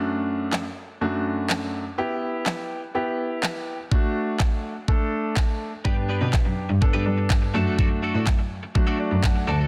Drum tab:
CP |--x---x-|--x---x-|--x---x-|--x---x-|
SD |--o---o-|--o---o-|--o---o-|--o---o-|
BD |--------|--------|o-o-o-o-|o-o-o-o-|

CP |--x---x-|
SD |--o---o-|
BD |o-o-o-o-|